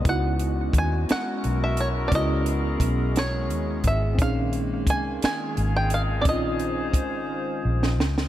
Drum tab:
HH |x-x-x-x-x-x-|x-x-x-x-x-x-|x-x-x-x-x-x-|x-x-x-------|
SD |------o-----|------o-----|------o-----|---------ooo|
BD |o---o-------|o---o-----o-|o---o-------|o---o-------|